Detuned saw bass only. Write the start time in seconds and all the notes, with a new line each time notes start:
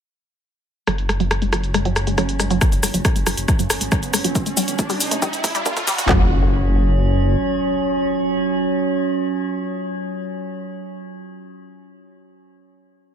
0.87 F#1
2.72 F#1
2.83 F#1
2.94 F#1
3.16 F#1
3.27 F#1
3.38 F#1
3.59 F#2
3.70 F#1
3.81 G#1
4.03 F#1
4.14 F#1
4.24 F#1
4.46 G1
4.57 G1
4.68 G1
4.90 C2
5.00 C2
5.11 C2
5.33 G2
5.44 G2
5.55 G2
5.77 G1
5.87 G1
5.98 G1
6.09 F#1